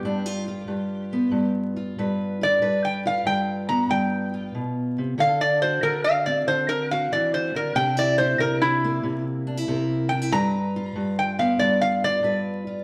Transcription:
0.00 0.29 G3 medium
0.00 0.29 B3 medium
0.00 1.51 G4 medium
0.00 0.29 B4 medium
0.05 0.67 G2 medium
0.05 0.26 D4 medium
0.26 0.47 F4 medium
0.48 1.75 F4 medium
0.68 1.31 G2 medium
1.13 2.59 B3 medium
1.31 1.96 G2 medium
1.76 2.40 F4 medium
1.98 2.60 G2 medium
1.98 2.60 B4 medium
2.41 2.59 F4 medium
2.41 2.83 D5 loud
2.62 3.24 G2 medium
2.62 5.16 B4 medium
2.85 3.05 G5 medium
3.05 4.33 F4 medium
3.05 3.26 F5 medium
3.25 3.88 G2 medium
3.25 3.68 G5 loud
3.69 5.16 B3 medium
3.69 3.89 A#5 medium
3.89 4.54 G2 medium
3.89 4.52 G5 loud
4.34 5.16 F4 medium
4.55 4.98 B2 medium
4.98 5.17 C3 medium
5.18 5.81 D3 medium
5.18 7.73 A4 medium
5.18 5.40 F5 loud
5.41 5.61 D5 loud
5.62 6.90 F#4 medium
5.62 5.82 C5 medium
5.83 6.46 D3 medium
5.83 6.03 A#4 medium
6.04 6.25 F5 loud
6.26 7.73 C4 medium
6.26 6.46 D5 medium
6.47 7.11 D3 medium
6.47 6.68 C5 loud
6.69 6.89 A#4 loud
6.91 7.73 F#4 medium
6.91 7.11 F5 loud
7.12 7.54 E3 medium
7.12 7.32 D5 medium
7.34 7.54 C5 medium
7.55 7.75 D3 medium
7.55 7.76 A#4 medium
7.75 8.37 C3 medium
7.75 7.97 D4 medium
7.75 7.96 G5 loud
7.97 8.18 E4 medium
7.97 8.18 D5 loud
8.18 9.47 E4 medium
8.18 8.39 C5 loud
8.38 9.02 C3 medium
8.38 8.60 A#4 loud
8.62 9.23 E4 loud
8.84 10.33 A#3 medium
9.03 9.67 C3 medium
9.47 9.57 D4 medium
9.57 10.11 E4 medium
9.68 10.32 C3 medium
9.68 10.30 A#4 medium
10.09 10.22 D4 medium
10.09 10.30 G5 loud
10.22 10.32 E4 medium
10.32 10.94 G2 medium
10.32 12.23 B4 medium
10.32 11.15 A#5 loud
10.76 12.03 F4 medium
10.96 11.58 G2 medium
11.19 11.39 G5 loud
11.39 12.84 B3 medium
11.39 11.60 F5 loud
11.59 12.22 G2 medium
11.59 11.81 D5 medium
11.81 12.02 F5 loud
12.04 12.66 F4 medium
12.04 12.39 D5 loud
12.23 12.84 G2 medium
12.23 12.84 B4 medium
12.67 12.84 F4 medium

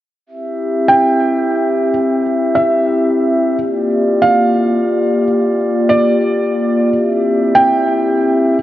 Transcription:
0.26 3.56 C4 medium
0.26 3.56 E4 medium
0.26 3.56 G4 medium
0.26 3.56 E5 medium
0.88 1.89 G5 medium
2.55 3.56 E5 medium
3.60 6.90 A#3 medium
3.60 6.90 F4 medium
3.60 6.90 G4 medium
3.60 6.90 D5 medium
4.22 5.22 F5 medium
5.89 6.89 D5 medium
6.93 8.62 C4 medium
6.93 8.62 E4 medium
6.93 8.62 G4 medium
6.93 8.62 E5 medium
7.55 8.56 G5 medium

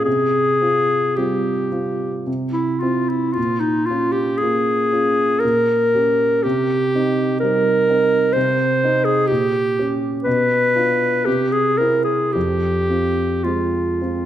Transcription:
0.05 0.60 C3 soft
0.05 1.18 G#4 medium
0.61 1.13 C4 soft
0.61 1.14 F4 soft
1.16 1.68 G3 soft
1.16 1.69 C4 soft
1.16 1.69 F4 soft
1.16 2.26 G4 soft
1.72 2.23 C4 soft
1.72 2.23 F4 soft
2.27 2.81 C3 soft
2.53 2.82 E4 soft
2.80 3.33 C4 soft
2.80 3.33 E4 soft
2.80 3.11 F4 soft
3.10 3.35 E4 soft
3.33 3.62 F4 medium
3.37 3.88 A#2 soft
3.60 3.88 D#4 soft
3.86 4.14 F4 medium
3.90 4.37 C#4 soft
3.90 4.37 F4 soft
4.12 4.39 G4 soft
4.37 5.41 G#4 medium
4.42 4.89 A#3 soft
4.42 4.88 C#4 soft
4.42 4.89 F4 soft
4.93 5.39 C#4 soft
4.93 5.39 F4 soft
5.40 6.45 A#4 medium
5.45 5.92 A#2 soft
5.95 6.41 C#4 soft
5.95 6.41 G4 soft
6.43 6.94 C3 soft
6.43 7.40 G4 medium
6.95 7.39 C4 soft
6.95 7.39 D#4 soft
7.40 7.85 G3 soft
7.40 7.85 C4 soft
7.40 7.86 D#4 soft
7.40 8.34 A#4 medium
7.90 8.32 C4 soft
7.90 8.32 D#4 soft
8.33 8.81 C3 soft
8.33 9.06 C5 medium
8.84 9.26 C4 soft
8.84 9.27 D#4 soft
9.05 9.29 G#4 medium
9.27 9.98 G4 medium
9.31 9.77 A#2 soft
9.79 10.23 C#4 soft
9.79 10.23 G4 soft
10.24 10.74 B2 soft
10.24 11.27 B4 medium
10.75 11.23 D4 soft
10.75 11.23 F4 soft
11.26 11.78 C3 soft
11.26 11.54 G4 medium
11.52 11.79 G#4 medium
11.78 12.31 C4 soft
11.78 12.31 E4 soft
11.78 12.04 A#4 medium
12.05 12.34 G#4 soft
12.33 12.89 F2 soft
12.33 13.45 G4 medium
12.90 13.41 C4 soft
12.90 13.41 F4 soft
13.44 13.98 G#3 soft
13.44 13.98 C4 soft
13.44 14.26 F4 soft
13.44 13.98 F4 soft
14.02 14.26 C4 soft
14.02 14.26 F4 soft

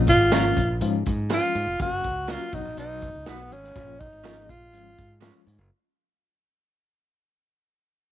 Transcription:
0.00 0.20 A#1 medium
0.07 0.78 F4 medium
0.07 kick medium
0.07 closed hi-hat medium
0.20 0.51 G#1 medium
0.32 0.59 F3 medium
0.32 0.59 A#3 medium
0.32 0.44 C#4 medium
0.32 0.59 C#4 medium
0.32 0.44 F4 medium
0.32 0.59 F4 medium
0.32 0.44 A#4 medium
0.32 snare loud
0.32 closed hi-hat medium
0.57 0.83 A#1 medium
0.57 kick medium
0.57 closed hi-hat medium
0.81 1.02 G#2 loud
0.81 1.08 F3 medium
0.81 1.08 G#3 medium
0.81 1.08 C#4 medium
0.81 1.08 F4 loud
0.81 closed hi-hat medium
1.06 1.38 G#2 medium
1.06 kick medium
1.06 closed hi-hat medium
1.30 1.57 F3 medium
1.30 1.42 G#3 medium
1.30 1.57 G#3 medium
1.30 1.42 C#4 medium
1.30 1.57 C#4 medium
1.30 1.43 F4 loud
1.30 1.57 F4 medium
1.30 1.78 F4 loud
1.30 snare loud
1.30 closed hi-hat medium
1.55 1.66 G#2 loud
1.55 closed hi-hat medium
1.67 1.78 F1 medium
1.80 2.01 F#1 loud
1.80 2.05 F#3 medium
1.80 2.05 A#3 medium
1.80 2.06 C#4 medium
1.80 2.05 F#4 medium
1.80 2.32 F#4 loud
1.80 kick loud
1.80 closed hi-hat medium
2.03 2.36 C#2 medium
2.03 kick medium
2.03 closed hi-hat medium
2.28 2.52 F#3 medium
2.28 2.54 A#3 medium
2.28 2.40 C#4 medium
2.28 2.54 C#4 medium
2.28 2.56 F4 loud
2.28 2.40 F#4 loud
2.28 2.53 F#4 medium
2.28 2.41 A#4 medium
2.28 snare loud
2.28 closed hi-hat medium
2.53 2.64 B1 medium
2.53 3.12 F#3 medium
2.53 3.12 B3 medium
2.53 2.59 D4 medium
2.53 2.78 D#4 loud
2.53 3.12 F#4 medium
2.53 kick loud
2.53 closed hi-hat medium
2.60 3.15 D#4 medium
2.65 2.76 A#1 medium
2.77 3.09 B1 loud
2.77 3.30 D#4 loud
2.77 closed hi-hat medium
3.01 kick medium
3.01 closed hi-hat medium
3.15 3.25 C#2 medium
3.26 3.52 B1 medium
3.26 3.52 F#3 medium
3.26 3.52 B3 medium
3.26 3.54 B3 medium
3.26 3.38 D#4 medium
3.26 3.52 D#4 medium
3.26 3.38 F#4 medium
3.26 3.52 F#4 medium
3.26 3.39 B4 medium
3.26 snare loud
3.26 closed hi-hat medium
3.52 3.72 G#1 loud
3.52 4.01 C#4 medium
3.52 closed hi-hat medium
3.64 snare soft
3.76 4.07 A#1 loud
3.76 4.01 F3 medium
3.76 4.01 A#3 medium
3.76 4.01 C#4 medium
3.76 4.01 F4 medium
3.76 kick loud
3.76 closed hi-hat medium
4.00 4.51 D#4 loud
4.00 kick medium
4.00 closed hi-hat medium
4.13 4.49 G#1 medium
4.24 4.50 F3 medium
4.24 4.50 A#3 medium
4.24 4.35 C#4 medium
4.24 4.50 C#4 medium
4.24 4.36 F4 medium
4.24 4.50 G#4 medium
4.24 4.36 A#4 medium
4.24 snare loud
4.24 closed hi-hat medium
4.49 4.73 A#1 medium
4.49 5.22 F4 medium
4.49 kick medium
4.49 closed hi-hat medium
4.73 4.94 G#1 loud
4.73 4.98 F3 medium
4.73 4.98 G#3 medium
4.73 4.99 C#4 medium
4.73 4.98 F4 medium
4.73 closed hi-hat medium
4.98 5.29 G#2 medium
4.98 kick medium
4.98 closed hi-hat medium
5.21 5.47 F3 medium
5.21 5.33 G#3 medium
5.21 5.48 G#3 medium
5.21 5.33 C#4 loud
5.21 5.47 C#4 medium
5.21 5.34 F4 medium
5.21 5.48 F4 medium
5.21 snare loud
5.21 closed hi-hat loud
5.47 5.57 G#2 medium
5.47 closed hi-hat medium
5.58 5.69 F#1 medium

